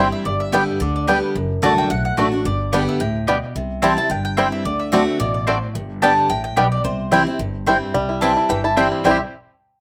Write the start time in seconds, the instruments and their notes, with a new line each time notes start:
Already playing: upright bass G1, steel-string acoustic guitar G2 E3, mandolin G5
0.00 steel-string acoustic guitar G3 C4 E4
0.12 mandolin E5
0.25 upright bass G1, steel-string acoustic guitar G2, mandolin D5
0.40 mandolin E5
0.52 steel-string acoustic guitar D3 G3 B3 G4, five-string banjo G3 B3 D4, mandolin B3 G4 D5 G5
0.80 upright bass D2, steel-string acoustic guitar D3, mandolin D5
0.96 mandolin D5
1.07 steel-string acoustic guitar D3 G3 B3 G4, five-string banjo G3 B3 D4, mandolin B3 G4 B4 D5 G5
1.35 upright bass F#1, steel-string acoustic guitar F#2
1.62 upright bass C2, steel-string acoustic guitar D3 A3 D4 F#4, mandolin A3 F#4 D5 A5, five-string banjo A3 D4
1.78 mandolin G5
1.90 upright bass B1, steel-string acoustic guitar A2, mandolin F#5
2.05 mandolin F#5
2.17 upright bass A1, steel-string acoustic guitar D3 A3 D4 F#4, mandolin A3 F#4 D5 A5, five-string banjo A3 D4
2.32 steel-string acoustic guitar D4 F#4
2.45 upright bass G1, steel-string acoustic guitar G2, mandolin D5
2.72 steel-string acoustic guitar D3 G3 B3 G4, five-string banjo G3 B3 D4, mandolin B3 G4 D5 G5
2.89 mandolin E5
3.00 upright bass D2, steel-string acoustic guitar A2, mandolin G5
3.27 steel-string acoustic guitar B2, five-string banjo G3 B3 D4, mandolin B3 G4 D5 G5
3.55 upright bass C2, steel-string acoustic guitar C3
3.82 steel-string acoustic guitar E3 G3 C4 E4, five-string banjo G3 C4 E4, mandolin C4 E4 C5 G5 A5
3.97 steel-string acoustic guitar C4 E4, mandolin A5
4.10 upright bass G1, steel-string acoustic guitar G2, mandolin G5
4.25 mandolin G5
4.37 steel-string acoustic guitar E3 G3 C4 E4, five-string banjo G3 C4 E4, mandolin C4 E4 C5 G5
4.52 mandolin E5
4.65 upright bass D2, steel-string acoustic guitar D3, mandolin D5
4.79 mandolin E5
4.92 steel-string acoustic guitar D3 A3 C4 F#4, five-string banjo A3 C4 D4, mandolin C4 F#4 D5 A5
5.20 upright bass A1, steel-string acoustic guitar B2, mandolin D5
5.34 mandolin D5
5.47 steel-string acoustic guitar A2, five-string banjo A3 C4 D4, mandolin C4 F#4 C5 D5 A5
5.75 upright bass G1, steel-string acoustic guitar G2
6.02 steel-string acoustic guitar D3 G3 B3 G4, five-string banjo G3 B3 D4, mandolin B3 G4 D5 G5 A5
6.29 upright bass A1, steel-string acoustic guitar A2, mandolin G5
6.44 mandolin G5
6.56 upright bass B1, steel-string acoustic guitar B2, five-string banjo G3 B3 D4, mandolin B3 G4 D5 G5
6.72 mandolin D5
6.84 upright bass C2, steel-string acoustic guitar C3, mandolin C5
7.11 steel-string acoustic guitar E3 G3 C4 E4, five-string banjo G3 C4 E4, mandolin C4 E4 C5 G5
7.27 steel-string acoustic guitar C4 E4
7.39 upright bass G1, steel-string acoustic guitar G2
7.66 steel-string acoustic guitar E3 G3 C4 E4, five-string banjo G3 C4 E4, mandolin C4 E4 C5 G5
7.94 upright bass C2, steel-string acoustic guitar C3, five-string banjo G3
8.09 five-string banjo E4
8.21 steel-string acoustic guitar E3 G3 C4 E4, five-string banjo E3, mandolin C4 E4 C5 G5 A5
8.37 five-string banjo E4
8.49 upright bass G1, steel-string acoustic guitar G2, five-string banjo E3, mandolin G5
8.64 five-string banjo E4, mandolin A5
8.76 steel-string acoustic guitar E3 G3 C4 E4, five-string banjo G3, mandolin C4 E4 C5 G5
8.92 five-string banjo C4
9.04 upright bass C2, steel-string acoustic guitar C3 E3 G3 C4 E4, five-string banjo G3 C4, mandolin C4 E4 C5 G5 C6
9.09 five-string banjo E4 G4